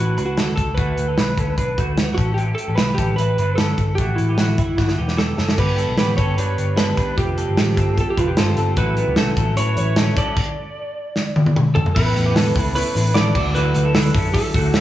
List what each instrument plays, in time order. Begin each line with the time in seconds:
Already playing: picked electric bass A1, clean electric guitar B4
0.00 clean electric guitar D4, lead electric guitar F#4
0.17 picked electric bass C#2, clean electric guitar D4 B4, closed hi-hat
0.26 lead electric guitar F#4
0.37 clean electric guitar D4 A4, snare, closed hi-hat
0.56 picked electric bass C#2, lead electric guitar A4, kick, closed hi-hat
0.74 picked electric bass D2, clean electric guitar F#4, lead electric guitar B4, kick, closed hi-hat
0.79 clean electric guitar A3
0.97 picked electric bass D2, closed hi-hat
1.08 clean electric guitar C#4 A4
1.18 picked electric bass B1, clean electric guitar D4 B4, snare, closed hi-hat
1.37 picked electric bass D2, clean electric guitar C#4 A4, kick, closed hi-hat
1.58 picked electric bass B1, clean electric guitar D4 B4, kick, closed hi-hat
1.78 picked electric bass D2, clean electric guitar A3 F#4, kick, closed hi-hat
1.97 snare, closed hi-hat
2.14 picked electric bass A1, lead electric guitar F#4, clean electric guitar A4, kick, closed hi-hat
2.19 clean electric guitar C#4
2.34 lead electric guitar G4, clean electric guitar G4, closed hi-hat
2.39 clean electric guitar C#4
2.55 lead electric guitar A4, closed hi-hat
2.68 picked electric bass A1, clean electric guitar C#4 A4
2.75 picked electric bass B1, clean electric guitar E4 B4, lead electric guitar B4, snare, closed hi-hat
2.95 picked electric bass A1, lead electric guitar G4, clean electric guitar A4, kick
2.99 clean electric guitar C#4, closed hi-hat
3.16 picked electric bass A1, clean electric guitar E4 B4, lead electric guitar B4, closed hi-hat
3.38 picked electric bass G1, clean electric guitar D4 B4, closed hi-hat
3.55 clean electric guitar C#4 A4, lead electric guitar A4, snare, closed hi-hat
3.78 picked electric bass G1, kick, closed hi-hat
3.95 picked electric bass A1, clean electric guitar F#4, lead electric guitar G4, kick, closed hi-hat
3.99 clean electric guitar A3
4.15 picked electric bass A1, lead electric guitar E4, closed hi-hat
4.29 clean electric guitar B3 G4
4.38 picked electric bass A1, clean electric guitar A3 F#4, snare, closed hi-hat
4.58 picked electric bass F#1, clean electric guitar G3 E4, kick, closed hi-hat
4.78 picked electric bass G1, clean electric guitar A3 F#4, kick, snare
4.88 snare
4.98 picked electric bass E1, clean electric guitar B3 G4
5.08 snare
5.18 lead electric guitar A4, snare
5.37 picked electric bass F#1, clean electric guitar C#4 A4, snare
5.49 snare
5.57 picked electric bass G1, steel-string acoustic guitar G3 B3 D4 G4, clean electric guitar B3 G4, reed electric piano D4 G4 B4, lead electric guitar B4, kick, crash
5.78 clean electric guitar C#4 A4, closed hi-hat
5.88 picked electric bass B1
5.97 picked electric bass A1, steel-string acoustic guitar G3 B3 D4 G4, clean electric guitar B3 G4, reed electric piano D4 G4 B4, lead electric guitar B4, snare, closed hi-hat
6.17 picked electric bass G1, steel-string acoustic guitar B3 D4 G4, clean electric guitar C#4 A4, lead electric guitar C#5, kick, closed hi-hat
6.37 picked electric bass G2, steel-string acoustic guitar G3 B3 D4 G4, reed electric piano D4 G4 D5, clean electric guitar D4 B4, closed hi-hat
6.57 picked electric bass G1, closed hi-hat
6.77 steel-string acoustic guitar G3 B3 D4 G4, clean electric guitar D4 A4, reed electric piano D4 G4 B4, lead electric guitar B4, snare, closed hi-hat
6.97 steel-string acoustic guitar B3 D4 G4, clean electric guitar D4 B4, kick, closed hi-hat
7.17 picked electric bass F1, steel-string acoustic guitar F3 A3 C4 G4, clean electric guitar C4 G4, reed electric piano F4 G4 A4, lead electric guitar G4, kick, closed hi-hat
7.37 clean electric guitar C4 A4, closed hi-hat
7.47 picked electric bass G1
7.56 picked electric bass A1, steel-string acoustic guitar F3 A3 C4 G4, clean electric guitar C4 G4, reed electric piano F4 G4 A4, snare, closed hi-hat
7.76 picked electric bass G1, steel-string acoustic guitar A3 C4 G4, clean electric guitar C4 A4, kick, closed hi-hat
7.96 steel-string acoustic guitar F3 A3 C4 G4, reed electric piano F4 G4 A4, kick, closed hi-hat
8.00 lead electric guitar A4
8.10 lead electric guitar G4
8.17 picked electric bass F1, clean electric guitar D4 B4, lead electric guitar F4, kick, closed hi-hat
8.28 lead electric guitar G4
8.36 picked electric bass G1, steel-string acoustic guitar F3 A3 C4 G4, reed electric piano F4 G4 C5, clean electric guitar F4 C5, lead electric guitar A4, snare, closed hi-hat
8.55 picked electric bass G1, steel-string acoustic guitar A3 C4 G4, clean electric guitar C4 A4, closed hi-hat
8.76 picked electric bass A1, steel-string acoustic guitar A2 F#3 C#4 E4, clean electric guitar A3 F#4, reed electric piano C#4 F#4 A4, lead electric guitar B4, kick, closed hi-hat
8.97 clean electric guitar B3 G4, closed hi-hat
9.07 picked electric bass C#2
9.16 picked electric bass B1, steel-string acoustic guitar A2 F#3 C#4 E4, clean electric guitar A3 F#4, reed electric piano C#4 F#4 A4, lead electric guitar A4, snare, closed hi-hat
9.36 picked electric bass A1, steel-string acoustic guitar F#3 C#4 E4, clean electric guitar C#4 A4, kick, closed hi-hat
9.55 steel-string acoustic guitar A2 F#3 C#4 E4, picked electric bass A2, reed electric piano C#4 F#4 A4, clean electric guitar E4 B4, lead electric guitar C#5, closed hi-hat
9.77 picked electric bass A1, lead electric guitar C#5, closed hi-hat
9.96 steel-string acoustic guitar A2 F#3 C#4 E4, reed electric piano C#4 F#4 A4, clean electric guitar C#4 A4, snare, closed hi-hat
10.15 steel-string acoustic guitar F#3 C#4 E4, clean electric guitar C#4 A4, lead electric guitar D5, kick, closed hi-hat
10.36 kick, crash
11.16 snare
11.36 high tom
11.46 high tom
11.56 mid tom
11.75 lead electric guitar A4, floor tom
11.86 floor tom
11.95 picked electric bass A1, steel-string acoustic guitar A3 B3 E4 A4 C#5, clean electric guitar A3 E4, reed electric piano B3 C#4 A4, lead electric guitar B4, kick, crash
12.16 picked electric bass A1, hi-hat pedal, open hi-hat
12.26 clean electric guitar B3 G4
12.36 reed electric piano B3 C#4 A4, clean electric guitar C#4 A4, snare, hi-hat pedal, open hi-hat
12.54 picked electric bass C#2, clean electric guitar D4 B4, steel-string acoustic guitar E4 A4 C#5, kick, hi-hat pedal, open hi-hat
12.74 steel-string acoustic guitar A3 B3 E4 A4 C#5, reed electric piano B3 C#4 A4, clean electric guitar E4 C#5, lead electric guitar B4, hi-hat pedal, open hi-hat
12.94 picked electric bass A1, clean electric guitar D4 B4, steel-string acoustic guitar E4 A4 C#5, hi-hat pedal, open hi-hat
13.14 picked electric bass A1, steel-string acoustic guitar B3 E4 A4 C#5, reed electric piano B3 C#4 A4, clean electric guitar C#4 A4, lead electric guitar D5, snare, hi-hat pedal, open hi-hat
13.34 picked electric bass D2, steel-string acoustic guitar D4 E4 A4, reed electric piano E4 F#4, clean electric guitar F#4 D5, kick, crash
13.54 picked electric bass D2, steel-string acoustic guitar D3 F#3 D4 E4 A4, clean electric guitar A3 F#4, lead electric guitar B4, hi-hat pedal, open hi-hat
13.74 picked electric bass D2, hi-hat pedal, open hi-hat
13.85 clean electric guitar C#4 A4
13.95 clean electric guitar D4 B4, reed electric piano D4 E4 F#4, lead electric guitar A4, snare, hi-hat pedal, open hi-hat
14.14 picked electric bass F#2, clean electric guitar C#4 A4, steel-string acoustic guitar D4 E4 A4, kick, hi-hat pedal, open hi-hat
14.33 steel-string acoustic guitar D3 F#3 D4 E4 A4, reed electric piano D4 E4 F#4, lead electric guitar A4, kick, hi-hat pedal, open hi-hat
14.53 picked electric bass D2, clean electric guitar A3 F#4, steel-string acoustic guitar D4 E4 A4, kick, hi-hat pedal, open hi-hat
14.73 steel-string acoustic guitar F#3 D4 E4 A4, clean electric guitar A3 E4, reed electric piano D4 E4 A4, snare, hi-hat pedal, open hi-hat